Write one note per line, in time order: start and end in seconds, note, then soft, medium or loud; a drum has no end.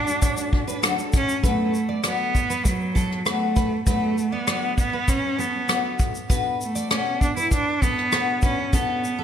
0.00 0.84 D4 medium
0.06 0.38 A3 soft
0.06 0.37 D4 soft
0.06 0.35 F#4 medium
0.06 shaker medium
0.22 0.36 C#5 medium
0.22 kick medium
0.22 shaker medium
0.36 0.50 A3 soft
0.36 0.52 C#4 medium
0.36 0.51 D4 medium
0.36 0.52 F#4 medium
0.36 shaker medium
0.51 0.67 A3 medium
0.51 0.66 C#4 medium
0.51 0.67 D4 medium
0.51 0.65 F#4 medium
0.51 kick medium
0.67 0.81 A3 soft
0.67 0.82 C#4 medium
0.67 0.82 D4 soft
0.67 0.82 F#4 medium
0.67 0.82 B4 medium
0.67 shaker medium
0.82 0.97 D3 medium
0.82 0.98 F#3 medium
0.82 0.98 A3 medium
0.82 0.96 C#4 medium
0.82 0.97 D4 medium
0.82 0.95 F#4 loud
0.82 1.26 A4 medium
0.82 cross-stick loud
0.82 shaker medium
0.96 1.11 A3 soft
0.96 1.13 C#4 medium
0.96 1.13 D4 medium
0.96 1.12 F#4 medium
0.96 shaker soft
1.12 1.41 A3 medium
1.12 1.43 C#4 medium
1.12 1.42 F#4 medium
1.12 kick loud
1.12 shaker medium
1.16 1.43 C#4 medium
1.29 shaker soft
1.41 1.71 D3 medium
1.41 1.73 F#3 medium
1.41 1.73 A3 medium
1.41 1.73 B3 medium
1.41 1.74 F#4 medium
1.41 1.74 A4 medium
1.41 1.72 B4 medium
1.41 kick medium
1.41 shaker medium
1.46 2.01 A3 medium
1.72 1.86 D3 medium
1.72 1.88 F#3 medium
1.72 1.90 B3 medium
1.72 shaker soft
1.88 2.02 D3 soft
1.88 2.03 F#3 soft
1.88 2.03 B3 soft
1.88 2.03 D5 medium
2.04 2.32 D3 medium
2.04 2.34 F#3 medium
2.04 2.35 A3 medium
2.04 2.35 B3 medium
2.04 2.68 B3 medium
2.04 2.36 F#4 medium
2.04 2.35 A4 medium
2.04 2.19 D5 medium
2.04 cross-stick medium
2.04 shaker medium
2.33 2.47 D3 medium
2.33 2.49 F#3 medium
2.33 2.51 B3 medium
2.33 kick medium
2.33 shaker soft
2.48 2.73 D3 soft
2.48 2.74 F#3 soft
2.48 2.79 B4 medium
2.48 shaker soft
2.52 2.75 B3 soft
2.65 3.26 F#3 medium
2.65 kick medium
2.65 shaker medium
2.79 2.92 D3 soft
2.79 2.94 F#3 soft
2.79 2.96 B3 soft
2.93 3.08 D3 medium
2.93 3.10 F#3 soft
2.93 3.10 A4 medium
2.93 kick medium
2.93 shaker soft
2.97 3.12 B3 medium
3.09 3.24 D3 soft
3.09 3.24 F#3 soft
3.09 3.25 B3 soft
3.09 cross-stick soft
3.25 3.69 D3 medium
3.25 3.71 F#3 medium
3.25 3.72 A3 medium
3.25 3.84 A3 medium
3.25 3.72 B3 medium
3.25 3.72 F#4 medium
3.25 3.72 A4 medium
3.25 3.40 B4 medium
3.25 cross-stick loud
3.25 shaker medium
3.56 3.70 B4 medium
3.56 kick medium
3.56 shaker soft
3.70 3.85 D3 soft
3.70 3.85 F#3 soft
3.70 3.86 B3 medium
3.86 4.14 D3 medium
3.86 4.16 F#3 medium
3.86 4.18 A3 medium
3.86 4.35 A3 medium
3.86 4.17 B3 medium
3.86 4.18 F#4 medium
3.86 4.18 A4 medium
3.86 4.16 B4 medium
3.86 kick medium
3.86 shaker medium
4.15 4.30 D3 medium
4.15 4.32 F#3 medium
4.15 4.33 B3 medium
4.15 shaker soft
4.31 4.45 D3 soft
4.31 4.45 F#3 soft
4.31 4.78 B3 medium
4.31 4.46 B3 soft
4.31 4.46 D5 medium
4.46 4.75 D3 medium
4.46 4.77 F#3 medium
4.46 4.78 A3 medium
4.46 4.78 B3 medium
4.46 4.78 F#4 medium
4.46 4.78 A4 medium
4.46 4.62 D5 medium
4.46 cross-stick loud
4.46 shaker medium
4.76 4.90 D3 medium
4.76 4.92 F#3 medium
4.76 5.11 B3 medium
4.76 4.93 B3 medium
4.76 kick medium
4.76 shaker soft
4.91 5.16 D3 soft
4.91 5.17 F#3 soft
4.91 5.18 B3 soft
4.91 5.22 B4 medium
5.08 5.41 C#4 medium
5.08 kick medium
5.08 shaker medium
5.21 5.35 D3 soft
5.21 5.37 F#3 soft
5.21 5.38 B3 soft
5.36 5.51 D3 medium
5.36 5.53 F#3 medium
5.36 5.54 B3 medium
5.36 6.00 B3 medium
5.36 5.53 A4 medium
5.36 shaker soft
5.52 5.66 D3 soft
5.52 5.66 F#3 soft
5.52 5.67 B3 soft
5.67 6.12 D3 medium
5.67 6.14 F#3 medium
5.67 6.14 A3 medium
5.67 6.14 B3 medium
5.67 6.15 F#4 medium
5.67 6.15 A4 medium
5.67 cross-stick loud
5.67 shaker medium
5.99 kick medium
5.99 shaker soft
6.13 6.29 D3 medium
6.13 6.28 F#3 medium
6.13 6.27 B3 medium
6.13 shaker soft
6.28 6.57 B2 medium
6.28 6.60 B3 medium
6.28 6.60 D4 medium
6.28 6.60 F#4 medium
6.28 6.60 A4 medium
6.28 6.58 B4 medium
6.28 kick loud
6.28 shaker medium
6.58 6.73 B2 medium
6.58 6.93 A3 medium
6.58 6.76 B3 medium
6.58 shaker soft
6.74 6.89 B2 soft
6.74 6.89 D5 medium
6.74 shaker medium
6.90 7.18 B2 medium
6.90 7.21 B3 medium
6.90 7.21 C#4 medium
6.90 7.22 F#4 medium
6.90 7.22 A4 medium
6.90 7.05 D5 medium
6.90 cross-stick loud
6.90 shaker medium
7.20 7.34 B2 soft
7.20 7.37 B3 medium
7.20 7.36 D4 medium
7.20 kick medium
7.20 shaker soft
7.36 7.60 B2 soft
7.36 7.62 B3 soft
7.36 7.51 E4 medium
7.36 7.65 B4 medium
7.36 shaker medium
7.51 7.85 D4 loud
7.51 kick medium
7.51 shaker medium
7.65 7.79 B2 soft
7.65 7.82 B3 medium
7.81 7.95 B2 medium
7.81 8.43 B3 medium
7.81 7.98 B3 medium
7.81 7.96 A4 medium
7.81 kick medium
7.81 shaker soft
7.96 8.11 B2 soft
7.96 8.12 B3 soft
7.96 cross-stick soft
8.12 8.56 B2 medium
8.12 8.58 B3 medium
8.12 8.58 D4 medium
8.12 8.59 F#4 medium
8.12 8.59 A4 medium
8.12 8.26 B4 medium
8.12 cross-stick loud
8.12 shaker medium
8.42 8.76 C#4 medium
8.42 8.57 B4 medium
8.42 kick medium
8.42 shaker soft
8.57 8.71 B2 soft
8.57 8.71 B3 soft
8.72 9.02 B2 medium
8.72 9.03 B3 medium
8.72 9.24 B3 medium
8.72 9.04 D4 medium
8.72 9.04 F#4 medium
8.72 9.02 A4 medium
8.72 9.04 A4 medium
8.72 kick medium
8.72 shaker medium
9.03 9.17 B2 medium
9.03 9.20 B3 medium
9.03 shaker soft
9.18 9.24 B2 soft
9.18 9.24 A4 medium